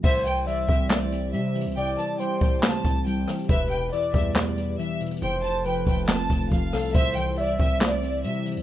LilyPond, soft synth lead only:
\new Staff \with { instrumentName = "Soft synth lead" } { \time 4/4 \key c \major \tempo 4 = 139 c''4 e''4 r2 | d''4 c''4 r2 | b'4 d''4 r2 | c''4 b'4 r4. a'8 |
c''4 e''4 r2 | }